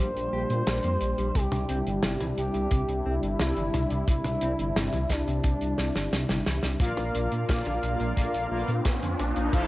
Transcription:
Already playing: analog synth pad G3 A#3 D4, analog synth lead C5
0.00 detuned saw bass A#1
0.16 detuned saw bass A#1, closed hi-hat
0.33 detuned saw bass A#1, clean electric guitar G4
0.50 detuned saw bass A#2, closed hi-hat
0.67 detuned saw bass A#1, clean electric guitar G3, snare, closed hi-hat
0.83 detuned saw bass F2, clean electric guitar A#3, closed hi-hat
1.01 detuned saw bass A#1, closed hi-hat
1.18 detuned saw bass A#1, clean electric guitar G3, closed hi-hat
1.35 detuned saw bass C2, analog synth pad C3 D4 E4, clean electric guitar C3, analog synth lead G4, kick, closed hi-hat
1.52 detuned saw bass C2, closed hi-hat, mid tom
1.69 detuned saw bass C2, clean electric guitar C4, closed hi-hat
1.87 detuned saw bass G1, closed hi-hat
2.03 detuned saw bass G1, clean electric guitar C3, snare, closed hi-hat
2.20 detuned saw bass C2, clean electric guitar E3, closed hi-hat, mid tom
2.37 detuned saw bass C2, analog synth lead G4, closed hi-hat
2.54 detuned saw bass C2, clean electric guitar C3, closed hi-hat
2.71 detuned saw bass C2, clean electric guitar C3, kick, closed hi-hat
2.88 detuned saw bass C2, closed hi-hat
3.06 detuned saw bass C2, clean electric guitar C4
3.23 detuned saw bass G1, closed hi-hat
3.39 detuned saw bass C2, clean electric guitar C3, analog synth lead E4, snare, closed hi-hat
3.57 detuned saw bass G1, clean electric guitar E3, closed hi-hat
3.74 detuned saw bass C2, closed hi-hat, mid tom
3.90 detuned saw bass C2, clean electric guitar C3, closed hi-hat
4.08 detuned saw bass C2, clean electric guitar C3, analog synth lead E4, kick, closed hi-hat
4.24 detuned saw bass C2, closed hi-hat, mid tom
4.41 detuned saw bass C2, clean electric guitar C4, closed hi-hat
4.59 detuned saw bass G1, closed hi-hat
4.76 detuned saw bass G1, clean electric guitar C3, snare, closed hi-hat
4.93 detuned saw bass C2, clean electric guitar E3, closed hi-hat, mid tom
5.10 detuned saw bass C2, analog synth lead D4, kick, snare, closed hi-hat
5.27 detuned saw bass C2, clean electric guitar C3, closed hi-hat
5.44 detuned saw bass C2, clean electric guitar C3, kick, closed hi-hat
5.61 detuned saw bass C2, closed hi-hat
5.78 detuned saw bass C2, clean electric guitar C3, snare, closed hi-hat
5.95 detuned saw bass G1, snare, closed hi-hat
6.12 detuned saw bass C2, clean electric guitar C3, snare, closed hi-hat
6.29 detuned saw bass G1, clean electric guitar C3, snare, closed hi-hat
6.46 detuned saw bass C2, clean electric guitar E3, snare, closed hi-hat
6.63 detuned saw bass C2, clean electric guitar C3, snare, closed hi-hat
6.80 detuned saw bass A#1, clean electric guitar A#2, analog synth pad A#3 D4 F4, analog polysynth A#3 F4 A#4 D5 F5, kick, closed hi-hat, riser
6.97 detuned saw bass A#1, closed hi-hat, mid tom
7.15 detuned saw bass A#1, clean electric guitar A#3, closed hi-hat
7.32 detuned saw bass A#2, closed hi-hat
7.49 clean electric guitar A#2, detuned saw bass A#2, kick, snare, closed hi-hat
7.65 detuned saw bass A#1, clean electric guitar D3, closed hi-hat, mid tom
7.83 detuned saw bass A#1, closed hi-hat
8.00 detuned saw bass A#1, clean electric guitar A#2, closed hi-hat
8.17 detuned saw bass A#1, clean electric guitar A#2, kick, closed hi-hat
8.34 detuned saw bass A#1, closed hi-hat
8.51 detuned saw bass A#1, analog polysynth A#3 F4 A#4 D5 F5, clean electric guitar A#3
8.68 detuned saw bass A#2, closed hi-hat
8.85 detuned saw bass A#1, clean electric guitar A#2, kick, snare, closed hi-hat
9.02 detuned saw bass F2, clean electric guitar D3, closed hi-hat
9.19 detuned saw bass A#1, closed hi-hat, mid tom
9.36 detuned saw bass A#1, clean electric guitar A#2, closed hi-hat
9.53 detuned saw bass F1, analog polysynth F3 F4 A4 C5 F5, clean electric guitar F3, analog synth pad A3 C4, kick, closed hi-hat

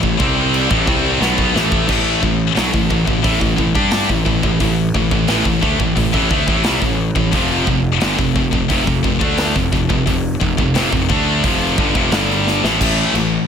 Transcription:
0.00 picked electric bass A1, distorted electric guitar A2 E3, kick
0.05 distorted electric guitar E3
0.17 picked electric bass C2, distorted electric guitar C3 G3 C4, kick
0.54 crash
0.69 picked electric bass A1, distorted electric guitar A2 E3, kick
0.87 picked electric bass C2, distorted electric guitar C3 G3 C4, kick
1.20 picked electric bass B1, distorted electric guitar B2 F#3 B3, snare
1.38 kick
1.54 picked electric bass A1, distorted electric guitar A2 E3 A3, snare
1.72 kick
1.87 picked electric bass A1, distorted electric guitar A2 E3 A3, kick, crash
2.21 picked electric bass A1, distorted electric guitar A2 E3, kick
2.55 picked electric bass B1, distorted electric guitar B2 F#3, snare, open hi-hat
2.73 picked electric bass A1, distorted electric guitar A2 E3, kick
2.90 picked electric bass A1, distorted electric guitar A2 E3, kick
3.05 picked electric bass A1, distorted electric guitar A2 E3, kick
3.22 picked electric bass A1, distorted electric guitar A2 E3, kick, open hi-hat
3.39 picked electric bass A1, distorted electric guitar A2 E3, kick
3.56 picked electric bass A1, distorted electric guitar A2 E3, kick
3.75 picked electric bass G2, distorted electric guitar G3 D4 G4, kick
3.91 snare, open hi-hat
4.08 picked electric bass A1, distorted electric guitar A2 E3, kick
4.25 picked electric bass A1, distorted electric guitar A2 E3, kick
4.43 picked electric bass A1, distorted electric guitar A2 E3, kick
4.60 picked electric bass A1, distorted electric guitar A2 E3, kick, open hi-hat
4.95 picked electric bass A1, distorted electric guitar A2 E3, kick
5.11 picked electric bass A1, distorted electric guitar A2 E3, kick
5.28 picked electric bass A1, distorted electric guitar A2 E3, snare, open hi-hat
5.45 picked electric bass A1, distorted electric guitar A2 E3, kick
5.61 picked electric bass D2, distorted electric guitar D3 A3, kick
5.79 picked electric bass A1, distorted electric guitar A2 E3, kick
5.96 picked electric bass A1, distorted electric guitar A2 E3, kick, open hi-hat
6.12 picked electric bass A1, distorted electric guitar A2 E3, kick
6.30 picked electric bass D2, distorted electric guitar D3 A3, kick
6.47 picked electric bass A1, distorted electric guitar A2 E3, kick
6.64 picked electric bass C2, distorted electric guitar C3 G3, snare, open hi-hat
6.81 picked electric bass A1, distorted electric guitar A2 E3, kick, snare
7.15 picked electric bass A1, distorted electric guitar A2 E3, kick
7.32 picked electric bass F1, distorted electric guitar F2 C3 F3, kick, open hi-hat
7.65 picked electric bass F1, distorted electric guitar F2 C3, kick
8.00 picked electric bass G1, distorted electric guitar G2 D3, snare, open hi-hat
8.18 picked electric bass F1, distorted electric guitar F2 C3, kick
8.35 picked electric bass F1, distorted electric guitar F2 C3, kick
8.51 picked electric bass F1, distorted electric guitar F2 C3, kick
8.69 picked electric bass F1, distorted electric guitar F2 C3, kick, open hi-hat
8.84 picked electric bass F1, distorted electric guitar F2 C3, kick
8.88 distorted electric guitar F2 C3
9.03 picked electric bass F1, distorted electric guitar F2 C3, kick
9.19 picked electric bass D2, distorted electric guitar D3 A3 D4, kick
9.38 snare, open hi-hat
9.54 picked electric bass F1, distorted electric guitar F2 C3, kick, snare
9.72 picked electric bass F1, distorted electric guitar F2 C3, kick, snare
9.89 picked electric bass F1, distorted electric guitar F2 C3, kick
10.06 picked electric bass F1, distorted electric guitar F2 C3, kick, open hi-hat
10.40 picked electric bass F1, distorted electric guitar F2 C3, kick
10.57 picked electric bass F1, distorted electric guitar F2 C3, kick
10.74 picked electric bass F1, distorted electric guitar F2 C3, snare, open hi-hat
10.92 picked electric bass F1, distorted electric guitar F2 C3, kick
11.09 picked electric bass D2, distorted electric guitar D3 A3 D4, kick
11.44 picked electric bass F1, distorted electric guitar F2 C3 F3, kick, open hi-hat
11.77 picked electric bass G1, distorted electric guitar G2 D3, kick
11.95 picked electric bass F1, distorted electric guitar F2 C3, kick
12.11 picked electric bass G1, distorted electric guitar G2 D3 G3, snare, open hi-hat
12.30 snare
12.47 snare
12.63 picked electric bass A1, distorted electric guitar A2 E3, snare
12.80 picked electric bass A1, distorted electric guitar A2 E3 A3, kick, crash
13.14 picked electric bass A1, distorted electric guitar A2 E3, crash

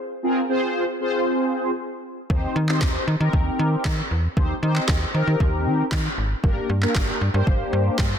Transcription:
0.23 analog polysynth C4 F4 G#4 A#4
0.49 analog polysynth C4 F4 G#4 C5
1.00 analog polysynth C4 F4 G#4 C5
2.30 fm bass D#2, analog polysynth C4 D#4 G4 C5, kick
2.56 fm bass D#3
2.68 analog polysynth C4 D#4 G4 C5, clap
2.81 fm bass D#2, kick, snare, clap
3.07 fm bass D#3
3.20 fm bass D#3, analog polysynth C4 D#4 G4 A#4
3.33 fm bass D#2, kick
3.59 fm bass D#3
3.84 fm bass D#3, kick, snare, clap
4.11 fm bass E2
4.37 fm bass D#2, analog polysynth C4 D#4 G4 C5, kick
4.62 fm bass D#3, analog polysynth C4 D#4 G4 C5
4.76 clap
4.88 fm bass D#2, kick, snare, clap
5.14 fm bass D#3, analog polysynth C4 D#4 G4 A#4
5.27 fm bass D#3
5.40 fm bass D#2, kick
5.66 fm bass D#3
5.91 fm bass D#3, kick, snare, clap
6.18 fm bass G#1
6.43 fm bass G1, analog polysynth A#3 D4 G4 A#4, kick
6.69 fm bass G2
6.82 analog polysynth A#3 D4 G4 A#4, clap
6.95 fm bass G1, kick, snare, clap
7.21 fm bass G2
7.34 fm bass G2, analog polysynth A#3 D4 G4 C5
7.47 fm bass G1, kick
7.73 fm bass G2
7.98 fm bass G2, kick, snare, clap

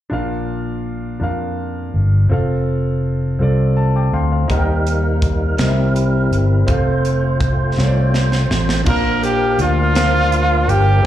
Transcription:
0.10 fingered electric bass A#1, grand piano A#2 D4 F4 A#4 F5
1.20 fingered electric bass F2, grand piano D4 F4 A#4 F5
1.94 fingered electric bass G1
2.29 fingered electric bass F1, grand piano C4 F4 A4 F5
3.39 fingered electric bass C2, grand piano C4 F4 A4 D5
3.77 grand piano A5
3.96 grand piano G5 A5 D6
4.13 fingered electric bass D2, grand piano F5 G5 C6
4.32 grand piano C5 F5
4.48 fingered electric bass D#2, grand piano D#3 D#4 G4 A#4 F#5, tonewheel organ G3 A#3 D#4 A#4, kick, closed hi-hat
4.58 grand piano G5
4.87 closed hi-hat
5.22 kick, closed hi-hat
5.57 fingered electric bass C2, grand piano C3 C4 G4 A#4, tonewheel organ G3 C4 D#4 A#4, snare, closed hi-hat
5.61 tonewheel organ E4, grand piano D#5
5.68 grand piano E5
5.96 closed hi-hat
6.31 fingered electric bass G1, closed hi-hat
6.66 fingered electric bass F1, tonewheel organ A3 C4 F4 C5, grand piano C4 F4 A4, kick, closed hi-hat
6.70 grand piano F5
7.05 closed hi-hat
7.40 kick, closed hi-hat
7.77 fingered electric bass C2, grand piano C4 F4 A4 C#5, snare
7.87 grand piano D5
8.14 snare
8.32 snare
8.50 fingered electric bass A1, snare
8.69 snare
8.84 fingered electric bass A#1, grand piano A#2 D4 F4 A#4 F5, tonewheel organ F3 A#3 D4 A#4, saxophone section D4 F4 A#4, kick, crash
8.89 trumpet A#4
9.23 saxophone section G4, trumpet G4, closed hi-hat
9.59 fingered electric bass D2, saxophone section A#3 D4 F4, trumpet F4, closed hi-hat
9.94 grand piano D4 F4 A#4 C5, snare, closed hi-hat
10.04 grand piano D5
10.32 closed hi-hat
10.68 fingered electric bass G1, trumpet G4, saxophone section G4, closed hi-hat
11.02 tonewheel organ F3 A3 C4 A4, grand piano C4

